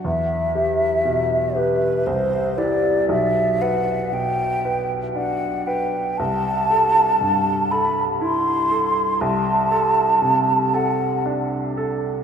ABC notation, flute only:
X:1
M:3/4
L:1/8
Q:1/4=59
K:G
V:1 name="Flute"
e3 B c d | e f g2 f g | a3 b c'2 | a3 f z2 |]